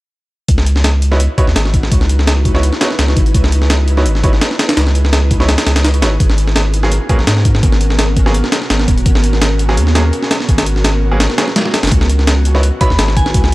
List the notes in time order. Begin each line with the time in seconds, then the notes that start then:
0.49 C#2 D#4 E4 F#4 B4, kick, closed hi-hat
0.58 snare
0.67 closed hi-hat
0.76 snare
0.84 snare, closed hi-hat
1.02 closed hi-hat
1.12 B3 D#4 E4 F#4 C#5, snare
1.20 closed hi-hat
1.38 B3 D#4 E4 F#4 C#5, kick, closed hi-hat
1.47 D#2, snare
1.56 G#1, snare, closed hi-hat
1.65 snare
1.74 kick, closed hi-hat
1.83 snare
1.91 C#2, kick, closed hi-hat
2.01 snare
2.09 closed hi-hat
2.19 snare
2.27 snare, closed hi-hat
2.45 kick, closed hi-hat
2.54 B3 D#4 E4 F#4 C#5, snare
2.63 closed hi-hat
2.72 snare
2.81 B3 D#4 E4 F#4 C#5, snare, closed hi-hat
2.90 snare
2.99 C#2, snare, closed hi-hat
3.08 snare
3.16 G#1, kick, closed hi-hat
3.26 closed hi-hat
3.34 C#2 G#4, kick, closed hi-hat
3.44 snare
3.52 closed hi-hat
3.62 snare
3.70 snare, closed hi-hat
3.88 closed hi-hat
3.97 B3 D#4 E4 F#4 C#5, snare
4.06 G#1, closed hi-hat
4.15 snare
4.24 B3 D#4 E4 F#4 C#5, kick, closed hi-hat
4.33 snare
4.41 snare, closed hi-hat
4.51 snare
4.59 snare, closed hi-hat
4.69 snare, closed hi-hat
4.77 C#2, snare, closed hi-hat
4.87 snare
4.95 closed hi-hat
5.05 snare
5.13 snare, closed hi-hat
5.31 kick, closed hi-hat
5.40 B3 D#4 E4 F#4 C#5, snare
5.49 snare, closed hi-hat
5.58 snare, closed hi-hat
5.66 C#2, snare, closed hi-hat
5.76 snare, closed hi-hat
5.84 snare, closed hi-hat
5.94 closed hi-hat
6.02 G#1 B3 D#4 E4 F#4 C#5, snare, closed hi-hat
6.20 G#1 B3 C#4 F#4 A#4, kick, closed hi-hat
6.30 snare
6.38 closed hi-hat
6.47 snare
6.56 snare, closed hi-hat
6.74 closed hi-hat
6.83 F#3 A#3 B3 C#4 G#4, snare
6.92 closed hi-hat
7.09 F#3 A#3 B3 C#4 G#4, kick, closed hi-hat
7.19 A#1, snare
7.27 G#2, snare, closed hi-hat
7.37 snare
7.45 kick, closed hi-hat
7.55 snare
7.63 G#1, kick, closed hi-hat
7.72 snare
7.81 closed hi-hat
7.90 snare
7.99 snare, closed hi-hat
8.16 kick, closed hi-hat
8.26 F#3 A#3 B3 C#4 G#4, snare
8.34 closed hi-hat
8.44 snare
8.52 snare, closed hi-hat
8.62 snare
8.70 G#1, snare, closed hi-hat
8.79 snare
8.88 D#1, kick, closed hi-hat
8.97 closed hi-hat
9.06 G#1, kick, closed hi-hat
9.15 snare
9.24 closed hi-hat
9.33 snare
9.42 snare, closed hi-hat
9.59 closed hi-hat
9.69 F#3 A#3 B3 C#4 G#4, snare
9.77 D#2, closed hi-hat
9.87 snare
9.95 F#3 A#3 B3 C#4 G#4, snare, closed hi-hat
10.13 closed hi-hat
10.23 snare
10.31 snare, closed hi-hat
10.40 snare
10.49 G#1, kick, closed hi-hat
10.58 snare, closed hi-hat
10.66 closed hi-hat
10.76 snare
10.85 snare, closed hi-hat
11.12 F#3 A#3 B3 C#4 G#4
11.20 snare, closed hi-hat
11.30 snare
11.38 F#3 A#3 B3 C#4 G#4, snare, closed hi-hat
11.48 snare
11.56 snare, closed hi-hat
11.66 snare
11.74 snare, closed hi-hat
11.83 F#1, snare, closed hi-hat
11.87 D#4 E4 B4, snare, closed hi-hat
11.92 C#2, kick, closed hi-hat
12.01 snare
12.10 closed hi-hat
12.19 snare
12.27 snare, closed hi-hat
12.45 closed hi-hat
12.55 B3 D#4 E4 F#4 C#5, snare
12.63 closed hi-hat
12.81 B3 D#4 E4 F#4 C#5 B5, kick, closed hi-hat
12.90 D#2, snare
12.99 G#1, snare, closed hi-hat
13.08 snare
13.17 G#5, kick, closed hi-hat
13.26 snare
13.34 C#2, kick, closed hi-hat
13.44 snare